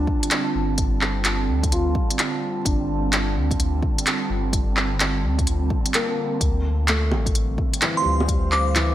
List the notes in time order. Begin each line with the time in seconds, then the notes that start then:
Already playing: D3 G3 C4 D4 F4 A5
0.07 kick
0.23 closed hi-hat
0.31 clap, closed hi-hat
0.55 G1
0.78 kick, closed hi-hat
1.01 clap
1.25 clap, closed hi-hat
1.48 D2
1.63 kick, closed hi-hat
1.72 F4, closed hi-hat
1.95 kick
2.10 closed hi-hat
2.19 clap, closed hi-hat
2.65 G1 D4, kick, closed hi-hat
3.13 clap, closed hi-hat
3.36 D2
3.51 kick, closed hi-hat
3.60 closed hi-hat
3.83 kick
3.98 closed hi-hat
4.07 clap, closed hi-hat
4.29 G1
4.53 kick, closed hi-hat
4.77 clap
5.00 clap, closed hi-hat
5.23 D2
5.39 kick, closed hi-hat
5.47 closed hi-hat
5.70 kick
5.86 closed hi-hat
5.94 A#3, clap, closed hi-hat
6.41 D2 D3, kick, closed hi-hat
6.66 C4
6.83 G3
6.88 A3, clap, closed hi-hat
7.11 A1, low bongo
7.26 kick, closed hi-hat
7.35 closed hi-hat
7.52 C5
7.58 F5, kick
7.74 closed hi-hat
7.82 E3, clap, closed hi-hat
7.97 C6
8.01 D2 G3
8.20 low bongo
8.28 G3, kick, closed hi-hat
8.52 D6, clap
8.75 E3, clap, closed hi-hat